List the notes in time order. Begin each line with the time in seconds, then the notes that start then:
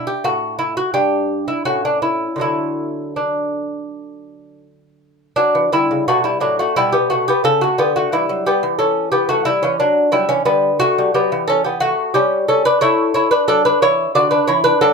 Already playing: B2
0.07 G4
0.24 A2 F#4
0.59 E4
0.77 F#4
0.94 G2 D4 G4
1.48 E4
1.65 A2 C#4 F#4
1.85 D4
2.02 E4
2.36 D3 F#3 A3
2.41 E4
3.16 D4
5.36 F#3 D4
5.55 E3
5.72 D3 G3 E4
5.91 C#3
6.08 B2 A3 F#4
6.24 G3 E4
6.40 A2 F#3 D4
6.59 A3 F#4
6.76 B2 G3 E4
6.92 B3 G4
7.10 A3 F#4
7.28 B3 G4
7.44 C#3 C#4 A4
7.61 A3 F#4
7.78 D3 B3 G4
7.96 A3 F#4
8.12 E3 G3 E4
8.29 F#3
8.46 G3 B3 G4
8.63 E3
8.79 C#4 A4
9.12 B3 G4
9.29 A3 F#4
9.45 G3 E4
9.63 E3 C#4
9.80 F#3 D4
10.12 F#3 G3 E4
10.29 E3 C#4
10.45 D3 G3 B3
10.80 A3 F#4
10.98 G3
11.14 F#3 B3 G4
11.32 E3
11.48 C#4 A4
11.64 B3 G4
11.80 A3 F#4
12.14 G3 C#4 G4
12.48 C#4 A4
12.65 D4 B4
12.81 A3 E4 C#5
13.14 E4 C#5
13.31 D4 B4
13.48 F#3 D4 A4
13.65 D4 B4
13.82 E3 E4 C#5
14.15 D3 F#4 D5
14.31 D4 B4
14.47 E3 E4 C#5
14.64 D4 B4
14.81 F#3 D4 A4